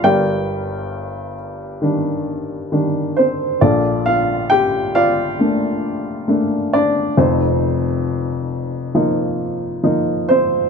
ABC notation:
X:1
M:4/4
L:1/8
Q:1/4=67
K:Bb
V:1 name="Upright piano"
[GBdg]3 z4 [Cc] | [DFAd] [Ff] [Gg] [Fdf]4 [Dd] | [CEc]4 z3 [Cc] |]
V:2 name="Upright piano" clef=bass
[G,,,G,,]4 [E,G,D]2 [E,G,D]2 | [B,,,B,,]4 [A,B,D]2 [A,B,D]2 | [F,,,F,,]4 [F,B,E]2 [F,B,E]2 |]